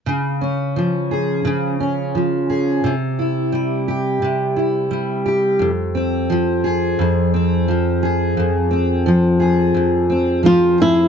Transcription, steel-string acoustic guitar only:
X:1
M:4/4
L:1/8
Q:"Swing 16ths" 1/4=87
K:Fm
V:1 name="Steel-string acoustic guitar"
D, D F, A D, D F, A | C, =E G, G C, E G, G | F,, C F, A F,, C F, A | F,, C F, A F,, C F, A |]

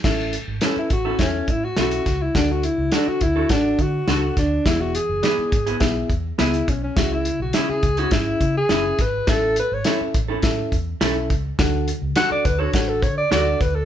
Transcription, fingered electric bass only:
X:1
M:4/4
L:1/16
Q:1/4=104
K:A
V:1 name="Fingered electric bass" clef=bass
A,,,3 G,,, z2 A,,,2 E,,2 A,,2 B,,,2 C,,2 | D,,3 C,, z2 D,,2 A,,,2 D,2 C,,2 D,,2 | E,,,3 F,,, z2 G,,,2 B,,,2 E,,2 C,,2 B,,,2 | C,,3 B,,, z2 C,,2 G,,,2 C,2 F,,,2 G,,,2 |
A,,,3 G,,, z2 A,,,2 A,,2 E,,2 B,,,2 C,,2 | D,,3 C,, z2 D,,2 A,,,2 D,2 D,,2 D,,2 |]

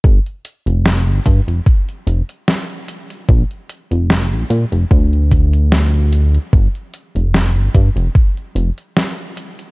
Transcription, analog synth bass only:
X:1
M:4/4
L:1/16
Q:"Swing 16ths" 1/4=74
K:Fmix
V:1 name="Analog synth bass" clef=bass
G,,, z2 F,,,2 G,,, G,, F,,, z2 F,,, z4 z | B,,, z2 F,,,2 B,,, B,, F,,, D,,6- D,, z | G,,, z2 F,,,2 G,,, G,, F,,, z2 F,,, z4 z |]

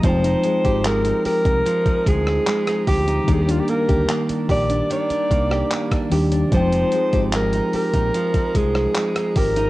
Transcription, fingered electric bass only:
X:1
M:4/4
L:1/16
Q:1/4=74
K:Fdor
V:1 name="Fingered electric bass" clef=bass
F,,,2 z A,,,3 z C,, z2 D,,2 z2 D,,2 | E,,2 z D,, z2 B,,,2 z2 C,,2 z2 E,,2 | F,,,2 z A,,,3 z B,,, z2 C,,2 z2 A,,,2 |]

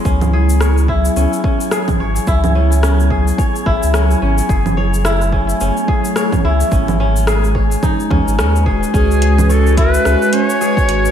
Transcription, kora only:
X:1
M:4/4
L:1/16
Q:"Swing 16ths" 1/4=108
K:C#m
V:1 name="Kora"
C z G z c z E2 C2 C z G z c z | E2 C2 C z G z c z E2 C2 C z | G z c z E2 C2 C z G z c z E2 | C2 C z G z c z D2 C2 C z G z |
C z G z c z E2 C2 C z G z c z |]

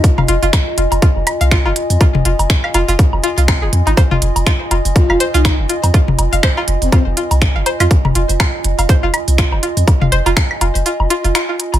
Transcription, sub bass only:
X:1
M:4/4
L:1/16
Q:"Swing 16ths" 1/4=122
K:Fm
V:1 name="Sub bass" clef=bass
z F,,, F,,, F,,, z2 F,,, F,,, z F,,, z C,,2 F,,, z F,, | z F,,, F,,, F,,, z2 F,,, F,,, z F,,, z C,,2 F,,, F,, A,,, | z F,,, F,,, F,,, z2 F,,, F,,, z F,,, z C,,2 F,,, z F,, | z F,,, F,,, F,,, z2 F,,, F,,, z F,,, z C,,2 F,,, z F,, |
z F,,, F,,, F,,, z2 F,,, F,,, z F,,, z C,,2 F,,, z F,, | z F,,, F,,, F,,, z2 F,,, F,,, z F,,, z F,,, z3 A,,, |]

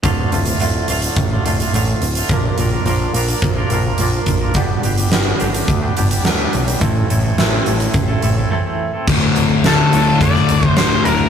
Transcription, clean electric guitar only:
X:1
M:4/4
L:1/16
Q:1/4=106
K:Dm
V:1 name="Clean electric guitar"
[D,,A,,D,A,F]2 [A,,D,A,F] [D,A,F] [D,,A,,D,A,F]2 [A,,D,A,F] [D,A,F]2 [D,A,F] [A,,D,A,F] [D,A,F] [D,,A,,D,A,F] [D,A,F]2 [D,A,F] | [B,,F,B,DFB]2 [B,DFB] [B,DFB] [B,,F,B,DFB]2 [B,DFB] [B,DFB]2 [B,DFB] [B,DFB] [B,DFB] [B,,F,B,DFB] [B,DFB]2 [B,DFB] | [G,,D,G,=B,DG]2 [G,B,DG] [G,B,DG] [G,,D,G,B,DG]2 [G,B,DG] [G,B,DG]2 [G,B,DG] [G,B,DG] [G,B,DG] [G,,D,G,B,DG] [G,B,DG]2 [G,B,DG] | [A,,E,A,CEA]2 [A,CEA] [A,CEA] [A,,E,A,CEA]2 [A,CEA] [A,CEA]2 [A,CEA] [A,CEA] [A,CEA] [A,,E,A,CEA] [A,CEA]2 [A,CEA] |
D,,2 A,,2 A,2 A,,2 D,2 A,2 A,,2 D,2 |]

